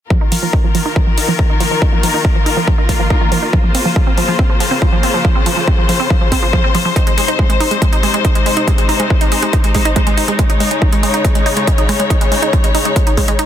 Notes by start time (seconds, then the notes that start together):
0.10 D#3 F3 A#3 F4 A#4, kick
0.21 D#4
0.32 F3, open hi-hat
0.43 F3
0.53 D#4, kick
0.64 F3
0.75 F3, open hi-hat
0.86 D#4
0.96 F3, kick
1.07 F3
1.18 D#4, open hi-hat
1.28 F3
1.39 F3, kick
1.50 D#4
1.60 F3, open hi-hat
1.71 F3
1.82 D#4, kick
1.93 F3
2.03 F3, open hi-hat
2.14 D#4
2.25 F3, kick
2.35 F3
2.46 D#4, open hi-hat
2.57 F3
2.67 F3, kick
2.78 D#4
2.89 F3, kick, open hi-hat
3.00 F3
3.10 D#4, kick
3.21 F3
3.32 F3, open hi-hat
3.42 D#4
3.53 C#3 F3 C5, kick
3.64 F3
3.75 C4, open hi-hat
3.85 F3
3.96 F3, kick
4.07 C4
4.17 F3, open hi-hat
4.28 F3
4.39 C4, kick
4.50 F3
4.60 F3, open hi-hat
4.71 C4
4.82 F3, kick
4.92 F3
5.03 C4, open hi-hat
5.14 F3
5.25 F3, kick
5.35 C4
5.46 F3, open hi-hat
5.57 F3
5.67 C4, kick
5.78 F3
5.89 F3, open hi-hat
6.00 C4
6.10 F3, kick
6.21 F3
6.32 C4, kick, open hi-hat
6.42 F3
6.53 F3, kick
6.64 C4
6.75 F3, open hi-hat
6.85 F3
6.96 C3 G#3 D#4, kick, closed hi-hat
7.07 G#3, closed hi-hat
7.17 G#3, open hi-hat
7.28 D#4, closed hi-hat
7.39 G#3, kick
7.50 G#3, closed hi-hat
7.60 D#4, open hi-hat
7.71 G#3, closed hi-hat
7.82 G#3, kick, closed hi-hat
7.92 D#4, closed hi-hat
8.03 G#3, open hi-hat
8.14 G#3, closed hi-hat
8.25 D#4, kick, closed hi-hat
8.35 G#3, closed hi-hat
8.46 G#3, open hi-hat
8.57 D#4, closed hi-hat
8.67 G#3, kick, closed hi-hat
8.78 G#3, closed hi-hat
8.89 D#4, open hi-hat
9.00 G#3, closed hi-hat
9.10 G#3, kick
9.21 D#4, closed hi-hat
9.32 G#3, open hi-hat
9.42 G#3, closed hi-hat
9.53 D#4, kick, closed hi-hat
9.64 G#3, closed hi-hat
9.75 G#3, kick, open hi-hat
9.85 D#4, closed hi-hat
9.96 G#3, kick, closed hi-hat
10.07 G#3, closed hi-hat
10.17 D#4, open hi-hat
10.28 G#3, closed hi-hat
10.39 C#3 G#3 C#5, kick, closed hi-hat
10.50 D#4, closed hi-hat
10.60 G#3, open hi-hat
10.71 G#3, closed hi-hat
10.82 D#4, kick
10.92 G#3, closed hi-hat
11.03 G#3, open hi-hat
11.14 D#4, closed hi-hat
11.25 G#3, kick, closed hi-hat
11.35 G#3, closed hi-hat
11.46 D#4, open hi-hat
11.57 G#3, closed hi-hat
11.67 G#3, kick, closed hi-hat
11.78 D#4, closed hi-hat
11.89 G#3, open hi-hat
12.00 G#3, closed hi-hat
12.10 D#4, kick, closed hi-hat
12.21 G#3, closed hi-hat
12.32 G#3, open hi-hat
12.42 D#4, closed hi-hat
12.53 G#3, kick, closed hi-hat
12.64 G#3, closed hi-hat
12.75 D#4, open hi-hat
12.85 G#3, closed hi-hat
12.96 G#3, kick, closed hi-hat
13.07 D#4, closed hi-hat
13.17 G#3, kick, open hi-hat
13.28 G#3, closed hi-hat
13.39 D#4, closed hi-hat